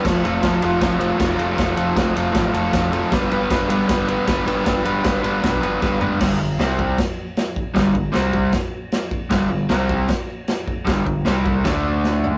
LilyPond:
<<
  \new Staff \with { instrumentName = "Overdriven electric guitar" } { \time 4/4 \key g \mixolydian \tempo 4 = 155 <f a c' f' a'>8 <f a c' f' a'>8 <f a c' f' a'>8 <f a c' f' a'>8 <f a c' f' a'>8 <f a c' f' a'>8 <f a c' f' a'>8 <f a c' f' a'>8 | <f a c' f' a'>8 <f a c' f' a'>8 <f a c' f' a'>8 <f a c' f' a'>8 <f a c' f' a'>8 <f a c' f' a'>8 <f a c' f' a'>8 <f a c' f' a'>8 | <g b d' b'>8 <g b d' b'>8 <g b d' b'>8 <g b d' b'>8 <g b d' b'>8 <g b d' b'>8 <g b d' b'>8 <g b d' b'>8 | <g b d' b'>8 <g b d' b'>8 <g b d' b'>8 <g b d' b'>8 <g b d' b'>8 <g b d' b'>8 <g b d' b'>8 <g b d' b'>8 |
<g, d g>8 <g, d>8 <c g c'>4 r2 | <g, d g>8 <g, d>8 <c g c'>4 r2 | <g, d g>8 <g, d>8 <c g c'>4 r2 | <g, d g>8 <g, d>8 <c g c'>4 <d a d'>2 | }
  \new Staff \with { instrumentName = "Picked electric bass" } { \clef bass \time 4/4 \key g \mixolydian f,,8 f,,8 f,,8 f,,8 f,,4 f,,8 f,,8 | f,,8 f,,8 f,,8 f,,8 a,,8 f,,8 f,,4 | g,,8 g,,8 g,,8 g,,8 g,,4 g,,8 g,,8 | g,,8 g,,8 g,,8 g,,8 b,,8 g,,8 g,,4 |
g,,8 g,,8 c,4 r2 | g,,8 g,,8 c,4 r2 | g,,8 g,,8 c,4 r2 | g,,8 g,,8 c,4 d,2 | }
  \new DrumStaff \with { instrumentName = "Drums" } \drummode { \time 4/4 <cymc bd sn>8 cymr8 <bd cymr sn>8 cymr8 <bd cymr sn>8 cymr8 <bd cymr sn>8 cymr8 | <bd cymr sn>8 cymr8 <bd cymr sn>8 cymr8 <bd cymr sn>8 cymr8 <bd cymr sn>8 cymr8 | <bd cymr sn>8 cymr8 <bd cymr sn>8 cymr8 <bd cymr sn>8 cymr8 <bd cymr sn>8 cymr8 | <bd cymr sn>8 cymr8 <bd cymr sn>8 cymr8 <bd cymr sn>8 cymr8 <bd sn>8 tomfh8 |
<cymc bd sn>4 <cymc sn>8 bd8 <cymc bd sn>4 <cymc sn>8 bd8 | <cymc bd sn>8 bd8 <cymc sn>8 bd8 <cymc bd sn>4 <cymc sn>8 bd8 | <cymc bd sn>4 <cymc sn>8 bd8 <cymc bd sn>4 <cymc sn>8 bd8 | <cymc bd sn>8 bd8 <cymc sn>8 bd8 <cymc bd sn>4 sn8 tomfh8 | }
>>